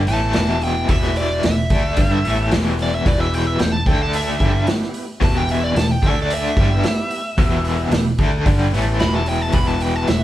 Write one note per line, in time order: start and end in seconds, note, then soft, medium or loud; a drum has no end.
0.06 0.33 A1 medium
0.06 0.34 A2 medium
0.06 0.34 E3 medium
0.06 0.35 A3 medium
0.06 0.60 B3 medium
0.06 0.61 E4 medium
0.06 0.61 G4 medium
0.06 0.61 A5 loud
0.06 open hi-hat soft
0.33 0.86 E1 medium
0.33 0.87 E2 medium
0.33 0.87 B2 medium
0.33 0.88 E3 loud
0.33 snare medium
0.33 open hi-hat medium
0.61 0.89 G5 medium
0.61 open hi-hat soft
0.88 1.40 E1 medium
0.88 1.42 E2 medium
0.88 1.42 B2 medium
0.88 1.43 E3 loud
0.88 1.60 B3 medium
0.88 1.60 E4 medium
0.88 1.61 G4 medium
0.88 1.16 E5 medium
0.88 kick medium
0.88 open hi-hat medium
1.03 snare soft
1.16 1.43 D5 medium
1.16 open hi-hat soft
1.43 1.69 E1 medium
1.43 1.65 E2 medium
1.43 1.66 B2 medium
1.43 2.50 E5 loud
1.43 snare loud
1.43 open hi-hat medium
1.70 1.96 D2 medium
1.70 1.96 D3 medium
1.70 1.97 A3 medium
1.70 1.97 D4 medium
1.70 kick loud
1.70 open hi-hat soft
1.97 2.23 G1 medium
1.97 2.24 G2 medium
1.97 2.24 D3 medium
1.97 2.24 G3 loud
1.97 kick loud
1.97 open hi-hat medium
2.24 2.51 A1 medium
2.24 2.51 A2 medium
2.24 2.51 E3 medium
2.24 2.51 A3 medium
2.24 2.78 B3 medium
2.24 2.79 E4 medium
2.24 2.79 G4 medium
2.24 open hi-hat soft
2.51 3.02 E1 medium
2.51 3.05 E2 medium
2.51 3.05 B2 medium
2.51 3.05 E3 medium
2.51 snare medium
2.51 open hi-hat medium
2.79 2.94 D5 medium
2.79 open hi-hat soft
2.95 3.07 E5 medium
3.06 3.56 E1 medium
3.06 3.58 E2 medium
3.06 3.58 B2 medium
3.06 3.59 E3 medium
3.06 3.77 B3 medium
3.06 3.77 E4 medium
3.06 3.78 G4 medium
3.06 3.20 D5 medium
3.06 kick medium
3.06 open hi-hat medium
3.20 3.34 E5 medium
3.34 3.47 G5 medium
3.34 open hi-hat soft
3.47 3.60 E5 medium
3.59 3.85 E1 medium
3.59 3.81 E2 medium
3.59 3.81 B2 medium
3.59 3.72 G5 medium
3.59 snare medium
3.59 open hi-hat medium
3.72 3.87 A5 loud
3.86 4.37 D2 medium
3.86 4.38 D3 medium
3.86 4.30 A3 medium
3.86 4.39 A3 medium
3.86 4.30 D4 medium
3.86 4.40 D4 medium
3.86 4.31 A4 medium
3.86 4.00 G5 medium
3.86 kick medium
3.86 open hi-hat soft
4.03 4.15 A5 medium
4.13 4.67 E5 loud
4.13 open hi-hat medium
4.39 4.65 G1 medium
4.39 4.66 G2 medium
4.39 4.66 D3 medium
4.39 4.67 G3 medium
4.39 5.06 B3 medium
4.39 5.06 E4 medium
4.39 5.06 G4 medium
4.39 kick medium
4.39 open hi-hat soft
4.67 snare medium
4.67 open hi-hat medium
4.82 snare soft
4.94 open hi-hat soft
5.21 5.72 E1 medium
5.21 5.74 E2 medium
5.21 5.74 B2 medium
5.21 5.75 E3 medium
5.21 5.92 B3 medium
5.21 5.93 E4 medium
5.21 5.93 G4 medium
5.21 5.36 A5 medium
5.21 kick loud
5.21 open hi-hat medium
5.37 5.51 G5 medium
5.49 5.63 E5 medium
5.49 open hi-hat soft
5.64 5.76 D5 medium
5.75 6.01 E1 medium
5.75 5.97 E2 medium
5.75 5.97 B2 medium
5.75 5.91 A5 medium
5.75 snare loud
5.75 open hi-hat medium
5.91 6.06 G5 medium
6.02 6.53 D2 medium
6.02 6.56 D3 medium
6.02 6.56 A3 medium
6.02 6.46 A3 medium
6.02 6.56 D4 loud
6.02 6.47 D4 medium
6.02 6.47 A4 medium
6.02 6.17 E5 medium
6.02 kick medium
6.02 open hi-hat medium
6.22 6.33 D5 medium
6.30 7.90 E5 loud
6.30 open hi-hat medium
6.56 6.82 G1 medium
6.56 6.83 G2 medium
6.56 6.83 D3 medium
6.56 6.83 G3 loud
6.56 7.22 B3 medium
6.56 7.23 E4 medium
6.56 7.23 G4 medium
6.56 kick medium
6.56 open hi-hat soft
6.83 snare medium
6.83 open hi-hat medium
7.11 open hi-hat soft
7.37 7.88 E1 medium
7.37 7.91 E2 medium
7.37 7.92 B2 medium
7.37 7.91 E3 medium
7.37 8.08 B3 medium
7.37 8.08 E4 medium
7.37 8.08 G4 medium
7.37 kick medium
7.37 open hi-hat medium
7.64 open hi-hat soft
7.90 8.16 E1 medium
7.90 8.13 E2 medium
7.90 8.14 B2 medium
7.90 snare medium
7.90 open hi-hat medium
8.18 8.44 D2 medium
8.18 8.44 D3 medium
8.18 8.45 A3 medium
8.18 8.46 D4 medium
8.18 kick medium
8.18 open hi-hat soft
8.46 8.71 G1 medium
8.46 8.72 G2 medium
8.46 8.72 D3 medium
8.46 8.72 G3 loud
8.46 kick loud
8.46 open hi-hat medium
8.72 8.98 A1 medium
8.72 8.99 A2 medium
8.72 8.99 E3 medium
8.72 8.99 A3 medium
8.72 9.25 B3 medium
8.72 9.25 E4 medium
8.72 9.26 G4 medium
8.72 open hi-hat soft
9.00 9.51 E1 medium
9.00 9.53 E2 medium
9.00 9.53 B2 loud
9.00 9.54 E3 loud
9.00 9.13 B5 medium
9.00 snare loud
9.00 open hi-hat medium
9.15 9.27 A5 medium
9.26 9.42 G5 medium
9.26 open hi-hat soft
9.42 9.54 A5 medium
9.52 10.04 E1 medium
9.52 10.07 E2 medium
9.52 10.08 B2 medium
9.52 10.08 E3 medium
9.52 10.24 B3 medium
9.52 10.24 E4 medium
9.52 10.24 F#4 medium
9.52 9.67 B5 medium
9.52 kick loud
9.52 open hi-hat medium
9.67 9.82 A5 medium
9.80 9.96 G5 medium
9.80 open hi-hat soft
9.96 10.08 A5 medium
10.07 10.24 E1 medium
10.07 10.24 E2 medium
10.07 10.24 B2 medium
10.07 10.24 E5 medium
10.07 snare loud
10.07 open hi-hat medium